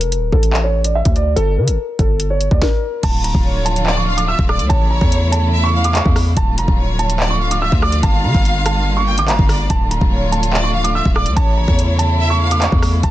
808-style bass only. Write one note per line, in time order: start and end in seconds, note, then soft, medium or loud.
0.01 0.18 F1 loud
0.17 0.32 D1 loud
0.32 1.02 A1 loud
1.05 1.35 D2 loud
1.37 1.59 G1 loud
1.57 1.69 D3 loud
1.68 1.78 G1 loud
1.99 2.49 G1 loud
2.51 2.61 D2 loud
3.03 3.33 D1 loud
3.35 4.35 D1 loud
4.39 4.61 D1 loud
4.60 4.69 D2 loud
4.70 5.00 A1 loud
5.01 6.01 E2 loud
6.05 6.35 E2 loud
6.37 6.59 D1 loud
6.57 6.67 F1 loud
6.68 7.53 D1 loud
7.51 7.71 C#1 loud
7.72 8.02 D2 loud
8.03 8.26 G1 loud
8.24 8.34 D3 loud
8.35 9.19 G1 loud
9.18 9.30 A1 loud
9.28 9.38 G1 loud
9.39 9.69 G1 loud
9.70 10.00 D1 loud
10.01 11.01 D1 loud
11.06 11.28 D1 loud
11.26 11.36 D2 loud
11.37 11.67 A1 loud
11.68 12.68 E2 loud
12.72 13.02 E2 loud
13.03 13.11 D1 loud